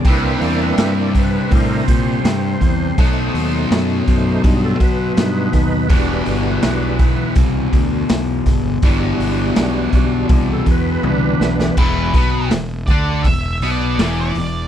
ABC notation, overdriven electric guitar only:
X:1
M:4/4
L:1/8
Q:1/4=82
K:Em
V:1 name="Overdriven electric guitar" clef=bass
[C,G,C]8 | [B,,F,B,]8 | [E,,B,,E,]8 | [E,,B,,E,]8 |
[E,,E,] [B,,B,] E,, [D,D] E,, [B,,B,] [E,,E,] E,, |]